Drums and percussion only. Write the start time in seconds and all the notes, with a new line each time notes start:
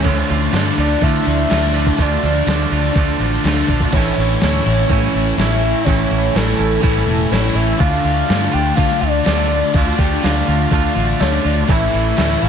0.04 kick, crash
0.28 crash
0.53 snare, crash
0.77 crash
1.02 kick, crash
1.25 crash
1.50 snare, crash
1.74 crash
1.86 kick
1.98 kick, crash
2.23 crash
2.47 snare, crash
2.71 crash
2.95 kick, crash
3.20 crash
3.44 snare, crash
3.68 kick, crash
3.80 kick
3.93 kick, crash
4.40 snare, crash
4.89 kick, crash
5.03 snare
5.38 snare, crash
5.87 kick, crash
6.35 snare, crash
6.83 kick, crash
6.97 snare
7.32 snare, crash
7.80 kick, crash
8.29 snare, crash
8.77 kick, crash
8.91 snare
9.25 snare, crash
9.74 kick, crash
9.99 kick
10.23 snare, crash
10.70 kick, crash
11.20 snare, crash
11.68 kick, crash
12.17 snare, crash